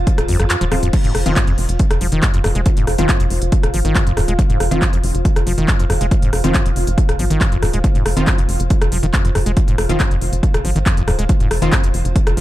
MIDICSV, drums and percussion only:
0, 0, Header, 1, 2, 480
1, 0, Start_track
1, 0, Key_signature, -4, "minor"
1, 0, Tempo, 431655
1, 1037, Time_signature, 4, 2, 24, 8
1, 13795, End_track
2, 0, Start_track
2, 0, Title_t, "Drums"
2, 77, Note_on_c, 9, 42, 84
2, 78, Note_on_c, 9, 36, 115
2, 188, Note_off_c, 9, 42, 0
2, 189, Note_off_c, 9, 36, 0
2, 201, Note_on_c, 9, 37, 102
2, 201, Note_on_c, 9, 42, 55
2, 312, Note_off_c, 9, 37, 0
2, 312, Note_off_c, 9, 42, 0
2, 317, Note_on_c, 9, 46, 99
2, 428, Note_off_c, 9, 46, 0
2, 440, Note_on_c, 9, 37, 86
2, 440, Note_on_c, 9, 42, 55
2, 551, Note_off_c, 9, 37, 0
2, 551, Note_off_c, 9, 42, 0
2, 555, Note_on_c, 9, 39, 127
2, 555, Note_on_c, 9, 42, 82
2, 666, Note_off_c, 9, 39, 0
2, 666, Note_off_c, 9, 42, 0
2, 680, Note_on_c, 9, 42, 54
2, 792, Note_off_c, 9, 42, 0
2, 796, Note_on_c, 9, 37, 98
2, 796, Note_on_c, 9, 46, 91
2, 908, Note_off_c, 9, 37, 0
2, 908, Note_off_c, 9, 46, 0
2, 921, Note_on_c, 9, 42, 54
2, 1032, Note_off_c, 9, 42, 0
2, 1037, Note_on_c, 9, 42, 83
2, 1037, Note_on_c, 9, 49, 79
2, 1038, Note_on_c, 9, 36, 123
2, 1148, Note_off_c, 9, 42, 0
2, 1148, Note_off_c, 9, 49, 0
2, 1149, Note_off_c, 9, 36, 0
2, 1160, Note_on_c, 9, 42, 55
2, 1271, Note_off_c, 9, 42, 0
2, 1276, Note_on_c, 9, 37, 94
2, 1276, Note_on_c, 9, 46, 112
2, 1387, Note_off_c, 9, 37, 0
2, 1387, Note_off_c, 9, 46, 0
2, 1400, Note_on_c, 9, 42, 57
2, 1511, Note_off_c, 9, 42, 0
2, 1516, Note_on_c, 9, 39, 127
2, 1516, Note_on_c, 9, 42, 88
2, 1518, Note_on_c, 9, 36, 120
2, 1628, Note_off_c, 9, 39, 0
2, 1628, Note_off_c, 9, 42, 0
2, 1629, Note_off_c, 9, 36, 0
2, 1639, Note_on_c, 9, 42, 59
2, 1750, Note_off_c, 9, 42, 0
2, 1756, Note_on_c, 9, 46, 96
2, 1867, Note_off_c, 9, 46, 0
2, 1879, Note_on_c, 9, 42, 54
2, 1990, Note_off_c, 9, 42, 0
2, 1995, Note_on_c, 9, 42, 88
2, 1997, Note_on_c, 9, 36, 121
2, 2106, Note_off_c, 9, 42, 0
2, 2109, Note_off_c, 9, 36, 0
2, 2119, Note_on_c, 9, 37, 96
2, 2119, Note_on_c, 9, 42, 57
2, 2231, Note_off_c, 9, 37, 0
2, 2231, Note_off_c, 9, 42, 0
2, 2235, Note_on_c, 9, 46, 112
2, 2346, Note_off_c, 9, 46, 0
2, 2358, Note_on_c, 9, 42, 58
2, 2469, Note_off_c, 9, 42, 0
2, 2475, Note_on_c, 9, 39, 125
2, 2475, Note_on_c, 9, 42, 85
2, 2477, Note_on_c, 9, 36, 119
2, 2587, Note_off_c, 9, 39, 0
2, 2587, Note_off_c, 9, 42, 0
2, 2588, Note_off_c, 9, 36, 0
2, 2599, Note_on_c, 9, 42, 58
2, 2710, Note_off_c, 9, 42, 0
2, 2715, Note_on_c, 9, 37, 95
2, 2715, Note_on_c, 9, 46, 92
2, 2826, Note_off_c, 9, 37, 0
2, 2826, Note_off_c, 9, 46, 0
2, 2838, Note_on_c, 9, 42, 56
2, 2949, Note_off_c, 9, 42, 0
2, 2955, Note_on_c, 9, 42, 82
2, 2957, Note_on_c, 9, 36, 127
2, 3066, Note_off_c, 9, 42, 0
2, 3068, Note_off_c, 9, 36, 0
2, 3078, Note_on_c, 9, 42, 57
2, 3189, Note_off_c, 9, 42, 0
2, 3195, Note_on_c, 9, 37, 88
2, 3195, Note_on_c, 9, 46, 112
2, 3306, Note_off_c, 9, 37, 0
2, 3306, Note_off_c, 9, 46, 0
2, 3319, Note_on_c, 9, 42, 58
2, 3430, Note_off_c, 9, 42, 0
2, 3435, Note_on_c, 9, 39, 127
2, 3435, Note_on_c, 9, 42, 86
2, 3437, Note_on_c, 9, 36, 127
2, 3546, Note_off_c, 9, 39, 0
2, 3546, Note_off_c, 9, 42, 0
2, 3549, Note_off_c, 9, 36, 0
2, 3558, Note_on_c, 9, 42, 58
2, 3669, Note_off_c, 9, 42, 0
2, 3675, Note_on_c, 9, 46, 100
2, 3786, Note_off_c, 9, 46, 0
2, 3799, Note_on_c, 9, 42, 55
2, 3910, Note_off_c, 9, 42, 0
2, 3916, Note_on_c, 9, 42, 91
2, 3918, Note_on_c, 9, 36, 127
2, 4027, Note_off_c, 9, 42, 0
2, 4029, Note_off_c, 9, 36, 0
2, 4041, Note_on_c, 9, 37, 93
2, 4041, Note_on_c, 9, 42, 58
2, 4152, Note_off_c, 9, 37, 0
2, 4152, Note_off_c, 9, 42, 0
2, 4156, Note_on_c, 9, 46, 115
2, 4268, Note_off_c, 9, 46, 0
2, 4281, Note_on_c, 9, 42, 58
2, 4392, Note_off_c, 9, 42, 0
2, 4398, Note_on_c, 9, 36, 125
2, 4398, Note_on_c, 9, 39, 122
2, 4398, Note_on_c, 9, 42, 87
2, 4509, Note_off_c, 9, 39, 0
2, 4509, Note_off_c, 9, 42, 0
2, 4510, Note_off_c, 9, 36, 0
2, 4522, Note_on_c, 9, 42, 55
2, 4634, Note_off_c, 9, 42, 0
2, 4638, Note_on_c, 9, 37, 88
2, 4638, Note_on_c, 9, 46, 99
2, 4749, Note_off_c, 9, 37, 0
2, 4749, Note_off_c, 9, 46, 0
2, 4762, Note_on_c, 9, 42, 55
2, 4873, Note_off_c, 9, 42, 0
2, 4879, Note_on_c, 9, 36, 127
2, 4879, Note_on_c, 9, 42, 80
2, 4990, Note_off_c, 9, 36, 0
2, 4990, Note_off_c, 9, 42, 0
2, 5002, Note_on_c, 9, 42, 57
2, 5113, Note_off_c, 9, 42, 0
2, 5118, Note_on_c, 9, 37, 90
2, 5118, Note_on_c, 9, 46, 114
2, 5230, Note_off_c, 9, 37, 0
2, 5230, Note_off_c, 9, 46, 0
2, 5242, Note_on_c, 9, 42, 56
2, 5353, Note_off_c, 9, 42, 0
2, 5359, Note_on_c, 9, 36, 127
2, 5359, Note_on_c, 9, 39, 119
2, 5359, Note_on_c, 9, 42, 84
2, 5470, Note_off_c, 9, 36, 0
2, 5470, Note_off_c, 9, 39, 0
2, 5470, Note_off_c, 9, 42, 0
2, 5482, Note_on_c, 9, 42, 59
2, 5594, Note_off_c, 9, 42, 0
2, 5600, Note_on_c, 9, 46, 99
2, 5711, Note_off_c, 9, 46, 0
2, 5724, Note_on_c, 9, 42, 56
2, 5835, Note_off_c, 9, 42, 0
2, 5839, Note_on_c, 9, 36, 127
2, 5839, Note_on_c, 9, 42, 88
2, 5950, Note_off_c, 9, 36, 0
2, 5950, Note_off_c, 9, 42, 0
2, 5963, Note_on_c, 9, 37, 91
2, 5963, Note_on_c, 9, 42, 56
2, 6075, Note_off_c, 9, 37, 0
2, 6075, Note_off_c, 9, 42, 0
2, 6080, Note_on_c, 9, 46, 113
2, 6191, Note_off_c, 9, 46, 0
2, 6203, Note_on_c, 9, 42, 57
2, 6315, Note_off_c, 9, 42, 0
2, 6319, Note_on_c, 9, 36, 125
2, 6319, Note_on_c, 9, 39, 120
2, 6319, Note_on_c, 9, 42, 82
2, 6430, Note_off_c, 9, 36, 0
2, 6430, Note_off_c, 9, 39, 0
2, 6430, Note_off_c, 9, 42, 0
2, 6444, Note_on_c, 9, 42, 58
2, 6555, Note_off_c, 9, 42, 0
2, 6559, Note_on_c, 9, 37, 91
2, 6559, Note_on_c, 9, 46, 100
2, 6670, Note_off_c, 9, 37, 0
2, 6670, Note_off_c, 9, 46, 0
2, 6682, Note_on_c, 9, 42, 54
2, 6794, Note_off_c, 9, 42, 0
2, 6798, Note_on_c, 9, 42, 76
2, 6799, Note_on_c, 9, 36, 127
2, 6910, Note_off_c, 9, 36, 0
2, 6910, Note_off_c, 9, 42, 0
2, 6922, Note_on_c, 9, 42, 54
2, 7033, Note_off_c, 9, 42, 0
2, 7038, Note_on_c, 9, 37, 90
2, 7038, Note_on_c, 9, 46, 113
2, 7149, Note_off_c, 9, 37, 0
2, 7149, Note_off_c, 9, 46, 0
2, 7162, Note_on_c, 9, 42, 52
2, 7273, Note_off_c, 9, 42, 0
2, 7278, Note_on_c, 9, 39, 120
2, 7278, Note_on_c, 9, 42, 82
2, 7279, Note_on_c, 9, 36, 125
2, 7389, Note_off_c, 9, 39, 0
2, 7389, Note_off_c, 9, 42, 0
2, 7390, Note_off_c, 9, 36, 0
2, 7402, Note_on_c, 9, 42, 55
2, 7513, Note_off_c, 9, 42, 0
2, 7519, Note_on_c, 9, 46, 102
2, 7630, Note_off_c, 9, 46, 0
2, 7643, Note_on_c, 9, 42, 50
2, 7754, Note_off_c, 9, 42, 0
2, 7759, Note_on_c, 9, 36, 127
2, 7759, Note_on_c, 9, 42, 85
2, 7870, Note_off_c, 9, 36, 0
2, 7870, Note_off_c, 9, 42, 0
2, 7883, Note_on_c, 9, 37, 92
2, 7883, Note_on_c, 9, 42, 53
2, 7994, Note_off_c, 9, 37, 0
2, 7994, Note_off_c, 9, 42, 0
2, 7998, Note_on_c, 9, 46, 110
2, 8110, Note_off_c, 9, 46, 0
2, 8123, Note_on_c, 9, 42, 53
2, 8234, Note_off_c, 9, 42, 0
2, 8239, Note_on_c, 9, 36, 121
2, 8239, Note_on_c, 9, 39, 114
2, 8239, Note_on_c, 9, 42, 80
2, 8350, Note_off_c, 9, 36, 0
2, 8351, Note_off_c, 9, 39, 0
2, 8351, Note_off_c, 9, 42, 0
2, 8362, Note_on_c, 9, 42, 52
2, 8474, Note_off_c, 9, 42, 0
2, 8479, Note_on_c, 9, 37, 94
2, 8479, Note_on_c, 9, 46, 95
2, 8591, Note_off_c, 9, 37, 0
2, 8591, Note_off_c, 9, 46, 0
2, 8601, Note_on_c, 9, 42, 53
2, 8713, Note_off_c, 9, 42, 0
2, 8718, Note_on_c, 9, 42, 77
2, 8719, Note_on_c, 9, 36, 126
2, 8829, Note_off_c, 9, 42, 0
2, 8830, Note_off_c, 9, 36, 0
2, 8842, Note_on_c, 9, 42, 49
2, 8953, Note_off_c, 9, 42, 0
2, 8959, Note_on_c, 9, 37, 97
2, 8959, Note_on_c, 9, 46, 106
2, 9070, Note_off_c, 9, 37, 0
2, 9070, Note_off_c, 9, 46, 0
2, 9082, Note_on_c, 9, 42, 52
2, 9193, Note_off_c, 9, 42, 0
2, 9199, Note_on_c, 9, 36, 118
2, 9199, Note_on_c, 9, 39, 115
2, 9199, Note_on_c, 9, 42, 76
2, 9310, Note_off_c, 9, 36, 0
2, 9310, Note_off_c, 9, 39, 0
2, 9310, Note_off_c, 9, 42, 0
2, 9323, Note_on_c, 9, 42, 52
2, 9434, Note_off_c, 9, 42, 0
2, 9439, Note_on_c, 9, 46, 95
2, 9550, Note_off_c, 9, 46, 0
2, 9562, Note_on_c, 9, 42, 51
2, 9674, Note_off_c, 9, 42, 0
2, 9678, Note_on_c, 9, 42, 77
2, 9680, Note_on_c, 9, 36, 124
2, 9789, Note_off_c, 9, 42, 0
2, 9791, Note_off_c, 9, 36, 0
2, 9803, Note_on_c, 9, 37, 100
2, 9803, Note_on_c, 9, 42, 53
2, 9914, Note_off_c, 9, 37, 0
2, 9914, Note_off_c, 9, 42, 0
2, 9918, Note_on_c, 9, 46, 111
2, 10030, Note_off_c, 9, 46, 0
2, 10044, Note_on_c, 9, 42, 50
2, 10155, Note_off_c, 9, 42, 0
2, 10159, Note_on_c, 9, 39, 120
2, 10159, Note_on_c, 9, 42, 75
2, 10160, Note_on_c, 9, 36, 122
2, 10270, Note_off_c, 9, 39, 0
2, 10270, Note_off_c, 9, 42, 0
2, 10271, Note_off_c, 9, 36, 0
2, 10283, Note_on_c, 9, 42, 53
2, 10395, Note_off_c, 9, 42, 0
2, 10399, Note_on_c, 9, 37, 93
2, 10399, Note_on_c, 9, 46, 92
2, 10510, Note_off_c, 9, 37, 0
2, 10510, Note_off_c, 9, 46, 0
2, 10522, Note_on_c, 9, 42, 51
2, 10633, Note_off_c, 9, 42, 0
2, 10638, Note_on_c, 9, 42, 74
2, 10639, Note_on_c, 9, 36, 120
2, 10750, Note_off_c, 9, 42, 0
2, 10751, Note_off_c, 9, 36, 0
2, 10763, Note_on_c, 9, 42, 49
2, 10874, Note_off_c, 9, 42, 0
2, 10878, Note_on_c, 9, 37, 101
2, 10878, Note_on_c, 9, 46, 101
2, 10990, Note_off_c, 9, 37, 0
2, 10990, Note_off_c, 9, 46, 0
2, 11003, Note_on_c, 9, 42, 50
2, 11114, Note_off_c, 9, 42, 0
2, 11118, Note_on_c, 9, 39, 119
2, 11118, Note_on_c, 9, 42, 82
2, 11119, Note_on_c, 9, 36, 119
2, 11229, Note_off_c, 9, 39, 0
2, 11229, Note_off_c, 9, 42, 0
2, 11230, Note_off_c, 9, 36, 0
2, 11244, Note_on_c, 9, 42, 52
2, 11355, Note_off_c, 9, 42, 0
2, 11359, Note_on_c, 9, 46, 90
2, 11471, Note_off_c, 9, 46, 0
2, 11484, Note_on_c, 9, 42, 51
2, 11595, Note_off_c, 9, 42, 0
2, 11599, Note_on_c, 9, 36, 119
2, 11600, Note_on_c, 9, 42, 79
2, 11710, Note_off_c, 9, 36, 0
2, 11711, Note_off_c, 9, 42, 0
2, 11724, Note_on_c, 9, 37, 100
2, 11724, Note_on_c, 9, 42, 53
2, 11835, Note_off_c, 9, 37, 0
2, 11835, Note_off_c, 9, 42, 0
2, 11840, Note_on_c, 9, 46, 103
2, 11951, Note_off_c, 9, 46, 0
2, 11964, Note_on_c, 9, 42, 50
2, 12075, Note_off_c, 9, 42, 0
2, 12078, Note_on_c, 9, 36, 121
2, 12078, Note_on_c, 9, 39, 123
2, 12078, Note_on_c, 9, 42, 78
2, 12189, Note_off_c, 9, 39, 0
2, 12189, Note_off_c, 9, 42, 0
2, 12190, Note_off_c, 9, 36, 0
2, 12201, Note_on_c, 9, 42, 54
2, 12313, Note_off_c, 9, 42, 0
2, 12318, Note_on_c, 9, 37, 99
2, 12318, Note_on_c, 9, 46, 88
2, 12429, Note_off_c, 9, 37, 0
2, 12429, Note_off_c, 9, 46, 0
2, 12440, Note_on_c, 9, 42, 51
2, 12552, Note_off_c, 9, 42, 0
2, 12557, Note_on_c, 9, 42, 78
2, 12558, Note_on_c, 9, 36, 117
2, 12668, Note_off_c, 9, 42, 0
2, 12669, Note_off_c, 9, 36, 0
2, 12681, Note_on_c, 9, 42, 53
2, 12792, Note_off_c, 9, 42, 0
2, 12798, Note_on_c, 9, 37, 101
2, 12798, Note_on_c, 9, 46, 107
2, 12910, Note_off_c, 9, 37, 0
2, 12910, Note_off_c, 9, 46, 0
2, 12922, Note_on_c, 9, 42, 52
2, 13033, Note_off_c, 9, 42, 0
2, 13038, Note_on_c, 9, 36, 116
2, 13038, Note_on_c, 9, 39, 127
2, 13038, Note_on_c, 9, 42, 79
2, 13149, Note_off_c, 9, 36, 0
2, 13149, Note_off_c, 9, 39, 0
2, 13149, Note_off_c, 9, 42, 0
2, 13161, Note_on_c, 9, 42, 55
2, 13272, Note_off_c, 9, 42, 0
2, 13278, Note_on_c, 9, 46, 90
2, 13389, Note_off_c, 9, 46, 0
2, 13401, Note_on_c, 9, 42, 50
2, 13512, Note_off_c, 9, 42, 0
2, 13518, Note_on_c, 9, 36, 117
2, 13518, Note_on_c, 9, 42, 82
2, 13629, Note_off_c, 9, 36, 0
2, 13629, Note_off_c, 9, 42, 0
2, 13642, Note_on_c, 9, 37, 101
2, 13642, Note_on_c, 9, 42, 52
2, 13753, Note_off_c, 9, 37, 0
2, 13753, Note_off_c, 9, 42, 0
2, 13758, Note_on_c, 9, 46, 102
2, 13795, Note_off_c, 9, 46, 0
2, 13795, End_track
0, 0, End_of_file